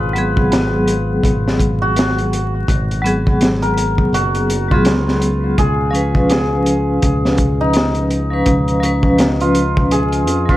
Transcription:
Already playing: fingered electric bass G#1, hammered dulcimer F4 G#4 B4
0.13 vibraphone F#3 B3, closed hi-hat
0.18 vibraphone G#4
0.37 kick
0.52 hammered dulcimer B4, snare, closed hi-hat
0.88 closed hi-hat
1.23 fingered electric bass G#1, kick, closed hi-hat
1.48 snare
1.60 kick, closed hi-hat
1.82 hammered dulcimer F#4
1.96 snare, closed hi-hat
2.18 closed hi-hat
2.33 closed hi-hat
2.68 fingered electric bass G#1, kick, closed hi-hat
2.91 closed hi-hat
3.02 vibraphone F#3 B3, closed hi-hat
3.07 vibraphone G#4
3.27 kick
3.41 snare, closed hi-hat
3.62 hammered dulcimer A#4, closed hi-hat
3.78 closed hi-hat
3.98 kick
4.13 fingered electric bass F#1, hammered dulcimer F#4, closed hi-hat
4.35 closed hi-hat
4.50 closed hi-hat
4.68 vibraphone F#3 B3, hammered dulcimer F4, kick
4.74 vibraphone G#4
4.85 fingered electric bass C#2, snare, closed hi-hat
5.08 snare
5.22 closed hi-hat
5.58 fingered electric bass C#2, hammered dulcimer G#4, kick, closed hi-hat
5.91 vibraphone F3 C#4, closed hi-hat
5.96 vibraphone B4
6.15 kick
6.29 hammered dulcimer G#4, snare, closed hi-hat
6.66 closed hi-hat
7.02 fingered electric bass C#2, kick, closed hi-hat
7.25 snare
7.38 kick, closed hi-hat
7.61 hammered dulcimer D#4
7.73 snare, closed hi-hat
7.95 closed hi-hat
8.10 closed hi-hat
8.30 vibraphone F3 C#4 B4
8.46 fingered electric bass C#2, kick, closed hi-hat
8.68 closed hi-hat
8.80 vibraphone F3 C#4, closed hi-hat
8.85 vibraphone B4
9.03 kick
9.18 snare, closed hi-hat
9.41 hammered dulcimer F4, closed hi-hat
9.55 closed hi-hat
9.77 kick
9.91 hammered dulcimer G#4, closed hi-hat
10.12 closed hi-hat
10.27 fingered electric bass F2, closed hi-hat
10.46 vibraphone F3 C#4, hammered dulcimer F4, kick
10.51 vibraphone B4

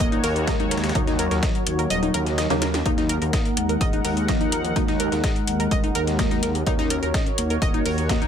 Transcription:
Already playing: analog synth lead A#3, analog synth pad F#4 A#4 C#5
0.00 detuned saw bass D#1, closed hi-hat
0.12 synth pluck D#4, closed hi-hat
0.24 detuned saw bass D#2, synth pluck A#4, closed hi-hat, open hi-hat
0.36 closed hi-hat
0.47 synth stab C#3 F#3 A#3, analog synth lead G#3, synth pluck D#5, kick, snare, closed hi-hat
0.60 detuned saw bass D#2, synth pluck D#4, closed hi-hat
0.71 synth pluck A#4, snare, closed hi-hat
0.77 snare, closed hi-hat
0.84 snare, closed hi-hat
0.89 snare, closed hi-hat
0.95 detuned saw bass D#2, synth stab C#3 F#3 A#3, analog synth lead F#3, synth pluck D#4, kick, closed hi-hat
1.07 synth pluck D#4, snare, closed hi-hat
1.19 synth pluck A#4, closed hi-hat
1.31 detuned saw bass D#2, synth pluck A#4, snare, closed hi-hat
1.43 synth pluck D#5, kick, snare, closed hi-hat
1.55 closed hi-hat
1.67 detuned saw bass D#2, closed hi-hat
1.79 synth pluck A#4, closed hi-hat
1.90 detuned saw bass D#1, synth pluck D#5, closed hi-hat
2.03 synth pluck D#4, closed hi-hat
2.14 detuned saw bass D#2, synth stab C#3 F#3 A#3, synth pluck A#4, closed hi-hat
2.26 snare, closed hi-hat
2.38 synth pluck D#5, snare, closed hi-hat
2.50 detuned saw bass D#2, synth stab C#3 F#3 A#3, synth pluck D#4, snare, closed hi-hat
2.62 synth pluck A#4, snare, closed hi-hat
2.74 snare, closed hi-hat
2.86 detuned saw bass D#2, synth stab D#3 F#3 A#3, analog synth lead A#3, synth pluck D#4, analog synth pad D#4 A#4 F#5, kick, closed hi-hat
2.98 synth pluck D#4, snare, closed hi-hat
3.09 synth pluck A#4, closed hi-hat
3.22 detuned saw bass D#2, synth pluck A#4, closed hi-hat
3.33 synth pluck D#5, kick, snare, closed hi-hat
3.46 closed hi-hat
3.57 detuned saw bass D#2, analog synth lead G#3, closed hi-hat
3.69 synth pluck A#4, closed hi-hat
3.81 detuned saw bass D#1, synth pluck D#5, kick, closed hi-hat
3.93 synth pluck D#4, closed hi-hat
4.05 detuned saw bass D#2, synth pluck A#4, closed hi-hat, open hi-hat
4.17 closed hi-hat
4.28 synth stab D#3 A#3, analog synth lead F3, synth pluck D#5, kick, snare, closed hi-hat
4.41 detuned saw bass D#2, synth pluck D#4, closed hi-hat
4.52 synth pluck A#4, closed hi-hat
4.65 closed hi-hat
4.76 detuned saw bass D#2, synth stab D#3 F#3 A#3, analog synth lead G#3, synth pluck D#4, kick, closed hi-hat
4.88 synth pluck D#4, snare, closed hi-hat
5.00 synth pluck A#4, closed hi-hat
5.12 detuned saw bass D#2, synth pluck A#4, snare, closed hi-hat
5.24 synth pluck D#5, kick, snare, closed hi-hat
5.36 closed hi-hat
5.47 detuned saw bass D#2, closed hi-hat
5.60 synth pluck A#4, closed hi-hat
5.71 detuned saw bass D#1, synth pluck D#5, kick, closed hi-hat
5.84 synth pluck D#4, closed hi-hat
5.95 detuned saw bass D#2, synth pluck A#4, closed hi-hat
6.07 snare, closed hi-hat
6.19 synth stab D#3 F#3 A#3, synth pluck D#5, kick, snare, closed hi-hat
6.31 detuned saw bass D#2, synth pluck D#4, snare, closed hi-hat
6.43 synth pluck A#4, snare, closed hi-hat
6.55 closed hi-hat
6.67 detuned saw bass D#2, synth stab C#3 F#3 A#3, analog synth lead C#4, synth pluck D#4, analog synth pad F#4 C#5, kick, closed hi-hat
6.79 synth pluck D#4, snare, closed hi-hat
6.90 synth pluck A#4, closed hi-hat
7.03 detuned saw bass D#2, synth pluck A#4, closed hi-hat
7.14 synth pluck D#5, kick, snare, closed hi-hat
7.26 closed hi-hat
7.38 detuned saw bass D#2, analog synth lead A#3, closed hi-hat
7.50 synth pluck A#4, closed hi-hat
7.62 detuned saw bass D#1, synth pluck D#5, kick, closed hi-hat
7.74 synth pluck D#4, closed hi-hat
7.86 detuned saw bass D#2, synth pluck A#4, closed hi-hat, open hi-hat
7.98 closed hi-hat
8.09 synth stab C#3 F#3 A#3, analog synth lead A#3, synth pluck D#5, kick, snare, closed hi-hat
8.22 detuned saw bass D#2, synth pluck D#4, closed hi-hat

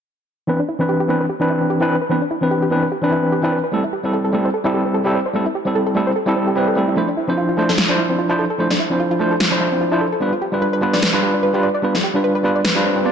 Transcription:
0.47 tine electric piano E3 C4 D4 B4, synth arpeggio sound B3
0.60 synth arpeggio sound D4
0.69 synth arpeggio sound E4
0.79 tine electric piano E3 C4 D4 B4, synth arpeggio sound C4
0.89 synth arpeggio sound G4
1.00 synth arpeggio sound G4
1.08 tine electric piano E3 C4 D4 B4, synth arpeggio sound B3
1.21 synth arpeggio sound B4
1.29 synth arpeggio sound G4
1.40 tine electric piano E3 C4 D4 B4, synth arpeggio sound D4
1.50 synth arpeggio sound E4
1.61 synth arpeggio sound C4
1.70 synth arpeggio sound G4
1.80 tine electric piano E3 C4 D4 B4, synth arpeggio sound E4
1.90 synth arpeggio sound B4
2.02 synth arpeggio sound B4
2.10 tine electric piano E3 C4 D4 B4, synth arpeggio sound B3
2.22 synth arpeggio sound D4
2.31 synth arpeggio sound E4
2.41 tine electric piano E3 C4 D4 B4, synth arpeggio sound C4
2.51 synth arpeggio sound G4
2.62 synth arpeggio sound G4
2.70 tine electric piano E3 C4 D4 B4, synth arpeggio sound B3
2.83 synth arpeggio sound B4
2.92 synth arpeggio sound G4
3.02 tine electric piano E3 C4 D4 B4, synth arpeggio sound D4
3.12 synth arpeggio sound E4
3.23 synth arpeggio sound C4
3.32 synth arpeggio sound G4
3.42 tine electric piano E3 C4 D4 B4, synth arpeggio sound E4
3.52 synth arpeggio sound B4
3.64 synth arpeggio sound B4
3.72 tine electric piano G3 C4 E4 A4, synth arpeggio sound A3
3.84 synth arpeggio sound E4
3.93 synth arpeggio sound G4
4.03 tine electric piano G3 C4 E4 A4, synth arpeggio sound C4
4.13 synth arpeggio sound A4
4.25 synth arpeggio sound A4
4.33 tine electric piano G3 C4 E4 A4, synth arpeggio sound A3
4.45 synth arpeggio sound C5
4.54 synth arpeggio sound A4
4.64 tine electric piano G3 C4 E4 A4, synth arpeggio sound E4
4.74 synth arpeggio sound G4
4.85 synth arpeggio sound C4
4.94 synth arpeggio sound A4
5.05 tine electric piano G3 C4 E4 A4, synth arpeggio sound G4
5.15 synth arpeggio sound C5
5.26 synth arpeggio sound C5
5.34 tine electric piano G3 C4 E4 A4, synth arpeggio sound A3
5.46 synth arpeggio sound E4
5.55 synth arpeggio sound G4
5.65 tine electric piano G3 C4 E4 A4, synth arpeggio sound C4
5.75 synth arpeggio sound A4
5.87 synth arpeggio sound A4
5.95 tine electric piano G3 C4 E4 A4, synth arpeggio sound A3
6.07 synth arpeggio sound C5
6.16 synth arpeggio sound A4
6.26 tine electric piano G3 C4 E4 A4, synth arpeggio sound E4
6.36 synth arpeggio sound C4
6.47 synth arpeggio sound G4
6.56 tine electric piano G3 C4 E4 B4, synth arpeggio sound C4
6.68 synth arpeggio sound A4
6.76 tine electric piano G3 C4 E4 A4, synth arpeggio sound A3
6.88 synth arpeggio sound E4
6.96 tine electric piano F3 D4 E4 C5, synth arpeggio sound A3
7.08 synth arpeggio sound D4
7.17 synth arpeggio sound E4
7.28 tine electric piano F3 D4 E4 C5, synth arpeggio sound C4
7.38 synth arpeggio sound F4
7.49 synth arpeggio sound F4
7.57 tine electric piano F3 D4 E4 C5, synth arpeggio sound A3
7.69 synth arpeggio sound A4, snare
7.78 synth arpeggio sound F4, snare
7.88 tine electric piano F3 D4 E4 C5, synth arpeggio sound D4
7.98 synth arpeggio sound E4
8.10 synth arpeggio sound C4
8.19 synth arpeggio sound F4
8.29 tine electric piano F3 D4 E4 C5, synth arpeggio sound E4
8.39 synth arpeggio sound A4
8.50 synth arpeggio sound A4
8.58 tine electric piano F3 D4 E4 C5, synth arpeggio sound A3
8.71 synth arpeggio sound D4, snare
8.80 synth arpeggio sound E4
8.90 tine electric piano F3 D4 E4 C5, synth arpeggio sound C4
9.00 synth arpeggio sound F4
9.11 synth arpeggio sound F4
9.19 tine electric piano F3 D4 E4 C5, synth arpeggio sound A3
9.31 synth arpeggio sound A4
9.40 synth arpeggio sound F4, snare
9.51 tine electric piano F3 D4 E4 C5, synth arpeggio sound D4
9.61 synth arpeggio sound E4
9.72 synth arpeggio sound C4
9.81 synth arpeggio sound F4
9.91 tine electric piano F3 D4 E4 C5, synth arpeggio sound E4
10.01 synth arpeggio sound A4
10.12 synth arpeggio sound A4
10.20 tine electric piano G3 D4 F4 B4, synth arpeggio sound B3
10.33 synth arpeggio sound F4
10.42 synth arpeggio sound G4
10.52 tine electric piano G3 D4 F4 B4, synth arpeggio sound D4
10.62 synth arpeggio sound B4
10.73 synth arpeggio sound B4
10.81 tine electric piano G3 D4 F4 B4, synth arpeggio sound B3
10.93 synth arpeggio sound D5, snare
11.02 synth arpeggio sound B4, snare
11.13 tine electric piano G3 D4 F4 B4, synth arpeggio sound F4
11.23 synth arpeggio sound G4
11.34 synth arpeggio sound D4
11.43 synth arpeggio sound B4
11.53 tine electric piano G3 D4 F4 B4, synth arpeggio sound G4
11.63 synth arpeggio sound D5
11.74 synth arpeggio sound D5
11.82 tine electric piano G3 D4 F4 B4, synth arpeggio sound B3
11.95 synth arpeggio sound F4, snare
12.04 synth arpeggio sound G4
12.14 tine electric piano G3 D4 F4 B4, synth arpeggio sound D4
12.24 synth arpeggio sound B4
12.35 synth arpeggio sound B4
12.43 tine electric piano G3 D4 F4 B4, synth arpeggio sound B3
12.56 synth arpeggio sound D5
12.65 synth arpeggio sound B4, snare, swell
12.75 tine electric piano G3 D4 F4 B4, synth arpeggio sound F4
12.85 synth arpeggio sound D4
12.96 synth arpeggio sound D4
13.04 tine electric piano G3 D4 F4 D5, synth arpeggio sound B3

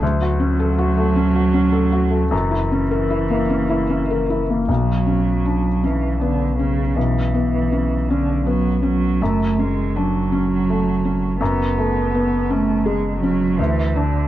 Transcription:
0.02 sub bass D2, felt piano D2, cello F#3
0.22 felt piano F#4
0.40 felt piano C#4
0.60 felt piano A4
0.78 felt piano F#4
0.97 felt piano A3
1.16 felt piano C#4
1.35 felt piano F#4
1.54 felt piano C#4
1.72 felt piano A4
1.92 felt piano F#4
2.11 felt piano A3
2.31 sub bass F#1, felt piano F#2, cello E3
2.51 felt piano E4
2.72 felt piano C#4
2.91 felt piano A#4
3.10 felt piano E4
3.30 felt piano A#3
3.50 felt piano C#4
3.69 felt piano E4
3.90 felt piano C#4
4.11 felt piano A#4
4.30 felt piano E4
4.50 felt piano A#3
4.68 felt piano B1, sub bass B1, cello F#3
5.07 felt piano C#4
5.45 felt piano D4
5.83 cello E3, felt piano C#4
6.21 cello D3, felt piano B3
6.58 cello C#3, felt piano C#4
6.97 felt piano B1, cello E3
7.35 felt piano B3
7.72 felt piano C#4
8.09 cello D3, felt piano C#4
8.46 cello F#3, felt piano B3
8.83 cello F#3, felt piano C#4
9.20 sub bass F#1, felt piano F#2, cello A3
9.59 cello G#3, felt piano C#4
9.96 cello F#3, felt piano D4
10.32 felt piano C#4
10.70 felt piano A3
11.05 felt piano C#4
11.41 felt piano F#2, cello B3
11.78 felt piano A3
12.14 felt piano B3
12.50 cello A3, felt piano C#4
12.86 felt piano G#3, cello G#3
13.20 cello F#3, felt piano C#4
13.58 felt piano D2, sub bass D2, cello E3
13.95 cello D3, felt piano D4

